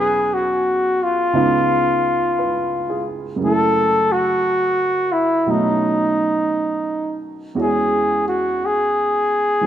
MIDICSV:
0, 0, Header, 1, 3, 480
1, 0, Start_track
1, 0, Key_signature, 4, "major"
1, 0, Tempo, 1036269
1, 1580, Time_signature, 4, 2, 24, 8
1, 4477, End_track
2, 0, Start_track
2, 0, Title_t, "Flugelhorn"
2, 0, Program_c, 0, 56
2, 0, Note_on_c, 0, 68, 73
2, 157, Note_on_c, 0, 66, 71
2, 164, Note_off_c, 0, 68, 0
2, 478, Note_on_c, 0, 65, 74
2, 485, Note_off_c, 0, 66, 0
2, 1427, Note_off_c, 0, 65, 0
2, 1597, Note_on_c, 0, 69, 81
2, 1908, Note_on_c, 0, 66, 81
2, 1915, Note_off_c, 0, 69, 0
2, 2374, Note_on_c, 0, 64, 70
2, 2381, Note_off_c, 0, 66, 0
2, 2550, Note_on_c, 0, 63, 57
2, 2557, Note_off_c, 0, 64, 0
2, 3342, Note_off_c, 0, 63, 0
2, 3529, Note_on_c, 0, 68, 69
2, 3813, Note_off_c, 0, 68, 0
2, 3835, Note_on_c, 0, 66, 63
2, 4009, Note_on_c, 0, 68, 76
2, 4016, Note_off_c, 0, 66, 0
2, 4477, Note_off_c, 0, 68, 0
2, 4477, End_track
3, 0, Start_track
3, 0, Title_t, "Upright piano"
3, 0, Program_c, 1, 0
3, 0, Control_c, 1, 64, 127
3, 0, Note_on_c, 1, 40, 46
3, 0, Note_on_c, 1, 47, 41
3, 0, Note_on_c, 1, 54, 38
3, 0, Note_on_c, 1, 61, 46
3, 0, Note_on_c, 1, 68, 51
3, 618, Note_on_c, 1, 37, 48
3, 622, Note_on_c, 1, 49, 45
3, 624, Note_on_c, 1, 59, 43
3, 626, Note_on_c, 1, 63, 42
3, 627, Note_off_c, 1, 40, 0
3, 628, Note_off_c, 1, 47, 0
3, 628, Control_c, 1, 64, 0
3, 628, Note_on_c, 1, 65, 57
3, 629, Note_off_c, 1, 54, 0
3, 629, Note_off_c, 1, 61, 0
3, 630, Note_off_c, 1, 68, 0
3, 713, Control_c, 1, 64, 127
3, 1105, Note_on_c, 1, 71, 40
3, 1341, Note_on_c, 1, 68, 41
3, 1482, Note_off_c, 1, 71, 0
3, 1557, Note_on_c, 1, 42, 43
3, 1565, Note_off_c, 1, 49, 0
3, 1571, Note_on_c, 1, 49, 36
3, 1579, Note_off_c, 1, 37, 0
3, 1582, Note_off_c, 1, 59, 0
3, 1583, Note_off_c, 1, 63, 0
3, 1584, Note_off_c, 1, 65, 0
3, 1584, Note_on_c, 1, 57, 35
3, 1587, Control_c, 1, 64, 0
3, 1596, Note_on_c, 1, 64, 38
3, 1610, Note_on_c, 1, 69, 43
3, 1662, Control_c, 1, 64, 127
3, 1682, Note_off_c, 1, 68, 0
3, 2528, Note_off_c, 1, 42, 0
3, 2531, Note_on_c, 1, 47, 43
3, 2535, Note_off_c, 1, 49, 0
3, 2537, Note_off_c, 1, 57, 0
3, 2537, Note_on_c, 1, 54, 41
3, 2544, Note_on_c, 1, 57, 40
3, 2547, Control_c, 1, 64, 0
3, 2547, Note_on_c, 1, 61, 40
3, 2548, Note_off_c, 1, 64, 0
3, 2553, Note_on_c, 1, 63, 44
3, 2555, Note_off_c, 1, 69, 0
3, 2615, Control_c, 1, 64, 127
3, 3497, Note_off_c, 1, 47, 0
3, 3497, Note_off_c, 1, 61, 0
3, 3497, Note_on_c, 1, 40, 38
3, 3500, Note_off_c, 1, 54, 0
3, 3500, Note_on_c, 1, 52, 33
3, 3502, Note_on_c, 1, 56, 34
3, 3504, Note_off_c, 1, 57, 0
3, 3504, Note_on_c, 1, 61, 36
3, 3504, Note_on_c, 1, 66, 45
3, 3507, Control_c, 1, 64, 0
3, 3508, Note_off_c, 1, 63, 0
3, 3585, Control_c, 1, 64, 127
3, 4446, Note_off_c, 1, 52, 0
3, 4453, Note_on_c, 1, 52, 33
3, 4457, Note_on_c, 1, 54, 35
3, 4477, Note_off_c, 1, 40, 0
3, 4477, Note_off_c, 1, 52, 0
3, 4477, Note_off_c, 1, 54, 0
3, 4477, Note_off_c, 1, 56, 0
3, 4477, Note_off_c, 1, 61, 0
3, 4477, Note_off_c, 1, 66, 0
3, 4477, End_track
0, 0, End_of_file